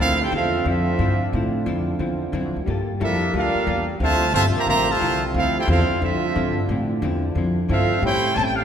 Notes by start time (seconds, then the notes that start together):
Already playing: C4 D4 F4
0.00 D2 D3 F3 A3 C4 E4 F4 A4 F5
0.21 E4 G4 A4 C5 G5
0.30 E2 D3 F3 C4 E4
0.34 A3 C4 F4 A4 E5 F5
0.64 F2 D3 F3 A3 C4 E4 F4
0.69 C4 F4 A4 E5
0.99 G2 D3 F3 C4 E4
1.33 A2 D3 F3 C4 E4
1.66 F2 D3 F3 C4 E4
1.99 E2 D3 F3 C4 E4
2.32 F#2 D3 F3 C4 E4
2.45 F2
2.56 D2
2.64 G2 G3 A#3 G4
2.68 A#3 F4 A4
3.00 F2 F3 G3 A#3 D4 E4 F4 A4 A#4 E5
3.33 D2 G3 A#3 D4 F4 A4 A#4 F5
3.55 muted upright bass stroke
3.67 E2 G3 A#3 F4 A4
3.97 D2 C3 D3 F3 A3 C4 F4
4.01 F3 C4 E4 F4 C5 E5 A5
4.34 G1 C3 D3 F3 A3 C4 E4 F4 C5 E5 A5
4.55 A#3 G4 C5 E5 A#5, muted upright bass stroke
4.67 A1 D3 F3 A#3 C4 E4 G4 C5 E5 A#5
4.88 C3 F3 A3 F4 C5 E5 A5
5.00 C2 D3 F3 C4 E4
5.34 D2 D3 F3 A3 C4 E4 F4 F5
5.38 E4 A4
5.56 E4 G4 A4 C5 G5
5.68 E2 D3 F3 A3 C4 E4 F4 A4 E5 F5
5.90 muted upright bass stroke
6.00 F2 D3 F3 A3 C4 D4 F4 A4 E5
6.04 E4
6.35 G2 D3 F3 C4 E4
6.69 A2 D3 F3 C4 E4
7.02 E2 D3 F3 C4 E4
7.35 F2 D3 F3 C4 E4
7.69 G2 D3 F3 A3 C4 E4 F4 A4 E5 F5
8.01 A2 G3 A3 C4 C#4 E4 G4 C5 C#5 G5
8.35 A1 A2 G3 C4 C#4 A5
8.44 G5
8.55 F5